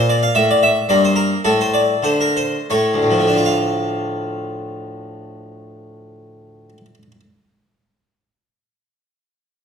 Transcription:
0, 0, Header, 1, 2, 480
1, 0, Start_track
1, 0, Key_signature, -1, "minor"
1, 0, Tempo, 536193
1, 1280, Time_signature, 3, 2, 24, 8
1, 1280, Tempo, 595829
1, 1760, Tempo, 660066
1, 2240, Tempo, 738007
1, 5120, Tempo, 720288
1, 6805, End_track
2, 0, Start_track
2, 0, Title_t, "Harpsichord"
2, 0, Program_c, 0, 6
2, 0, Note_on_c, 0, 46, 74
2, 0, Note_on_c, 0, 58, 50
2, 84, Note_on_c, 0, 74, 98
2, 196, Note_off_c, 0, 74, 0
2, 203, Note_on_c, 0, 77, 85
2, 216, Note_off_c, 0, 46, 0
2, 313, Note_on_c, 0, 76, 119
2, 314, Note_off_c, 0, 77, 0
2, 316, Note_on_c, 0, 45, 69
2, 429, Note_off_c, 0, 76, 0
2, 453, Note_on_c, 0, 74, 101
2, 559, Note_off_c, 0, 74, 0
2, 562, Note_on_c, 0, 76, 109
2, 696, Note_off_c, 0, 45, 0
2, 752, Note_off_c, 0, 58, 0
2, 795, Note_off_c, 0, 76, 0
2, 797, Note_on_c, 0, 43, 62
2, 797, Note_on_c, 0, 58, 47
2, 801, Note_on_c, 0, 74, 99
2, 915, Note_off_c, 0, 74, 0
2, 936, Note_on_c, 0, 72, 90
2, 1036, Note_on_c, 0, 70, 93
2, 1044, Note_off_c, 0, 72, 0
2, 1187, Note_off_c, 0, 43, 0
2, 1246, Note_off_c, 0, 70, 0
2, 1251, Note_off_c, 0, 58, 0
2, 1293, Note_on_c, 0, 57, 50
2, 1293, Note_on_c, 0, 69, 100
2, 1295, Note_on_c, 0, 45, 68
2, 1402, Note_off_c, 0, 69, 0
2, 1425, Note_on_c, 0, 72, 90
2, 1526, Note_on_c, 0, 74, 76
2, 1529, Note_off_c, 0, 72, 0
2, 1673, Note_off_c, 0, 45, 0
2, 1760, Note_on_c, 0, 50, 57
2, 1766, Note_off_c, 0, 74, 0
2, 1769, Note_on_c, 0, 72, 96
2, 1880, Note_off_c, 0, 72, 0
2, 1892, Note_on_c, 0, 70, 81
2, 2002, Note_off_c, 0, 70, 0
2, 2007, Note_on_c, 0, 72, 83
2, 2144, Note_off_c, 0, 50, 0
2, 2211, Note_off_c, 0, 72, 0
2, 2217, Note_off_c, 0, 57, 0
2, 2249, Note_on_c, 0, 57, 41
2, 2252, Note_on_c, 0, 73, 80
2, 2254, Note_on_c, 0, 45, 60
2, 2407, Note_on_c, 0, 38, 56
2, 2453, Note_off_c, 0, 45, 0
2, 2461, Note_on_c, 0, 45, 49
2, 2513, Note_on_c, 0, 53, 47
2, 2563, Note_off_c, 0, 57, 0
2, 2571, Note_on_c, 0, 57, 45
2, 2623, Note_on_c, 0, 62, 48
2, 2660, Note_off_c, 0, 73, 0
2, 2682, Note_on_c, 0, 65, 49
2, 2739, Note_on_c, 0, 77, 59
2, 4845, Note_off_c, 0, 38, 0
2, 4899, Note_off_c, 0, 45, 0
2, 4951, Note_off_c, 0, 53, 0
2, 5009, Note_off_c, 0, 57, 0
2, 5061, Note_off_c, 0, 62, 0
2, 5120, Note_off_c, 0, 65, 0
2, 5178, Note_off_c, 0, 77, 0
2, 6805, End_track
0, 0, End_of_file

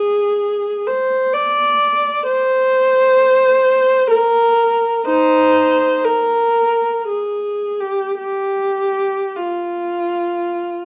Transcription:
0, 0, Header, 1, 2, 480
1, 0, Start_track
1, 0, Tempo, 920245
1, 1180, Time_signature, 3, 2, 24, 8
1, 2136, Tempo, 977199
1, 3096, Tempo, 1025641
1, 3576, Tempo, 1109057
1, 4056, Tempo, 1174168
1, 5146, End_track
2, 0, Start_track
2, 0, Title_t, "Viola"
2, 0, Program_c, 0, 41
2, 0, Note_on_c, 0, 68, 76
2, 441, Note_off_c, 0, 68, 0
2, 455, Note_on_c, 0, 72, 70
2, 696, Note_on_c, 0, 74, 74
2, 701, Note_off_c, 0, 72, 0
2, 1176, Note_off_c, 0, 74, 0
2, 1180, Note_on_c, 0, 72, 91
2, 2116, Note_off_c, 0, 72, 0
2, 2139, Note_on_c, 0, 70, 82
2, 2609, Note_off_c, 0, 70, 0
2, 2614, Note_on_c, 0, 63, 74
2, 2618, Note_on_c, 0, 72, 88
2, 3080, Note_off_c, 0, 63, 0
2, 3091, Note_off_c, 0, 72, 0
2, 3098, Note_on_c, 0, 70, 75
2, 3576, Note_off_c, 0, 70, 0
2, 3578, Note_on_c, 0, 68, 61
2, 3884, Note_off_c, 0, 68, 0
2, 3891, Note_on_c, 0, 67, 61
2, 4052, Note_off_c, 0, 67, 0
2, 4057, Note_on_c, 0, 67, 74
2, 4527, Note_off_c, 0, 67, 0
2, 4540, Note_on_c, 0, 65, 54
2, 5146, Note_off_c, 0, 65, 0
2, 5146, End_track
0, 0, End_of_file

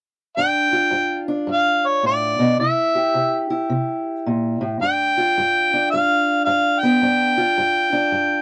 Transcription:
0, 0, Header, 1, 3, 480
1, 0, Start_track
1, 0, Tempo, 554017
1, 324, Time_signature, 4, 2, 24, 8
1, 7294, End_track
2, 0, Start_track
2, 0, Title_t, "Harmonica"
2, 0, Program_c, 0, 22
2, 322, Note_on_c, 0, 79, 98
2, 1073, Note_off_c, 0, 79, 0
2, 1313, Note_on_c, 0, 77, 91
2, 1614, Note_on_c, 0, 73, 76
2, 1627, Note_off_c, 0, 77, 0
2, 1779, Note_off_c, 0, 73, 0
2, 1788, Note_on_c, 0, 74, 79
2, 2225, Note_off_c, 0, 74, 0
2, 2251, Note_on_c, 0, 76, 81
2, 2998, Note_off_c, 0, 76, 0
2, 4182, Note_on_c, 0, 79, 101
2, 5100, Note_off_c, 0, 79, 0
2, 5115, Note_on_c, 0, 77, 90
2, 5567, Note_off_c, 0, 77, 0
2, 5587, Note_on_c, 0, 77, 86
2, 5885, Note_on_c, 0, 79, 89
2, 5898, Note_off_c, 0, 77, 0
2, 7294, Note_off_c, 0, 79, 0
2, 7294, End_track
3, 0, Start_track
3, 0, Title_t, "Steel-string acoustic guitar"
3, 0, Program_c, 1, 25
3, 321, Note_on_c, 1, 43, 62
3, 327, Note_on_c, 1, 62, 48
3, 629, Note_on_c, 1, 65, 52
3, 768, Note_off_c, 1, 43, 0
3, 788, Note_on_c, 1, 43, 65
3, 1099, Note_off_c, 1, 62, 0
3, 1110, Note_on_c, 1, 62, 52
3, 1242, Note_off_c, 1, 43, 0
3, 1274, Note_on_c, 1, 43, 64
3, 1725, Note_off_c, 1, 43, 0
3, 1759, Note_on_c, 1, 45, 50
3, 2066, Note_off_c, 1, 45, 0
3, 2071, Note_on_c, 1, 47, 58
3, 2226, Note_off_c, 1, 62, 0
3, 2226, Note_off_c, 1, 65, 0
3, 2244, Note_off_c, 1, 47, 0
3, 2247, Note_on_c, 1, 48, 61
3, 2258, Note_on_c, 1, 64, 49
3, 2558, Note_on_c, 1, 67, 54
3, 2692, Note_off_c, 1, 48, 0
3, 2723, Note_on_c, 1, 48, 71
3, 3024, Note_off_c, 1, 64, 0
3, 3035, Note_on_c, 1, 64, 51
3, 3170, Note_off_c, 1, 48, 0
3, 3202, Note_on_c, 1, 48, 62
3, 3650, Note_off_c, 1, 48, 0
3, 3694, Note_on_c, 1, 46, 54
3, 3989, Note_off_c, 1, 46, 0
3, 3992, Note_on_c, 1, 45, 59
3, 4149, Note_off_c, 1, 64, 0
3, 4164, Note_off_c, 1, 45, 0
3, 4167, Note_on_c, 1, 43, 60
3, 4178, Note_on_c, 1, 62, 48
3, 4481, Note_off_c, 1, 67, 0
3, 4484, Note_on_c, 1, 65, 56
3, 4612, Note_off_c, 1, 43, 0
3, 4658, Note_on_c, 1, 43, 67
3, 4965, Note_off_c, 1, 62, 0
3, 4969, Note_on_c, 1, 62, 56
3, 5098, Note_off_c, 1, 43, 0
3, 5142, Note_on_c, 1, 43, 70
3, 5579, Note_off_c, 1, 43, 0
3, 5604, Note_on_c, 1, 43, 63
3, 5918, Note_on_c, 1, 59, 53
3, 6050, Note_off_c, 1, 43, 0
3, 6080, Note_on_c, 1, 43, 58
3, 6087, Note_off_c, 1, 62, 0
3, 6090, Note_on_c, 1, 62, 52
3, 6106, Note_off_c, 1, 65, 0
3, 6390, Note_on_c, 1, 65, 59
3, 6416, Note_off_c, 1, 59, 0
3, 6528, Note_off_c, 1, 43, 0
3, 6564, Note_on_c, 1, 43, 73
3, 6857, Note_off_c, 1, 62, 0
3, 6868, Note_on_c, 1, 62, 53
3, 7009, Note_off_c, 1, 43, 0
3, 7035, Note_on_c, 1, 43, 68
3, 7294, Note_off_c, 1, 43, 0
3, 7294, Note_off_c, 1, 62, 0
3, 7294, Note_off_c, 1, 65, 0
3, 7294, End_track
0, 0, End_of_file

